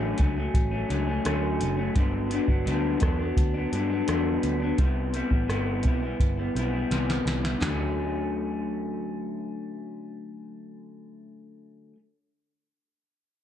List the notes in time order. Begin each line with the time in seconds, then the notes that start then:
Already playing: A1 D3 F#3 A3 C#4
0.18 C#2 D3 F#3 A3, kick, closed hi-hat
0.23 C#4
0.36 F#3 A3 C#4
0.54 A1, kick, closed hi-hat
0.71 A3 C#4
0.76 F#3
0.89 C#2 D3 F#3 A3 C#4, closed hi-hat
1.07 F#3 A3 C#4
1.24 D2 D3 F#3 A3 C#4, cross-stick, closed hi-hat
1.61 F#1, closed hi-hat
1.77 A3 C#4
1.81 F#3
1.95 G1 G2 D3 F#3 B3 D4, kick, closed hi-hat
2.30 D3 F#3 B3, closed hi-hat
2.34 D4
2.48 G1 F#3 B3 D4, kick
2.65 D2 G2 D3 F#3 B3 D4, closed hi-hat
3.00 E2 D3 F#3 B3, kick, cross-stick, closed hi-hat
3.04 D4
3.19 F#3 B3 D4
3.37 D2, kick, closed hi-hat
3.54 F#3 B3 D4
3.72 G2 D3 F#3 B3 D4, closed hi-hat
3.89 F#3 B3 D4
4.07 E2 G2 D3 F#3 B3 D4, cross-stick, closed hi-hat
4.43 D2, closed hi-hat
4.60 F#3 B3 D4
4.77 C2 C3 G3 B3 E4, kick, closed hi-hat
5.13 C3 G3 B3 E4, closed hi-hat
5.30 A1 B3 E4, kick
5.34 G3
5.48 G1 C3 G3 B3 E4, cross-stick, closed hi-hat
5.83 B1 C3 G3 B3, kick, closed hi-hat
5.88 E4
6.02 G3 B3 E4
6.20 G1, kick, closed hi-hat
6.37 G3 B3 E4
6.55 B1 C3 G3 B3 E4, closed hi-hat
6.73 B3 E4
6.77 G3
6.91 C2 C3 G3 B3 E4, snare, closed hi-hat
7.10 snare
7.26 C2, snare, closed hi-hat
7.43 G3 B3 E4, snare
7.58 D2 D3, clap, floor tom
7.62 F#3 A3, snare
7.70 C#4